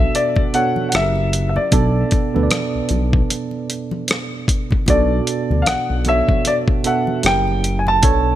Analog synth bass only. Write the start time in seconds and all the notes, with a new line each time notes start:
0.94 F#1
1.72 B1
2.36 D2
2.75 B1
2.91 B1
4.89 B1
5.50 D2
5.68 B1
5.90 B1
7.24 F#1
8.04 B1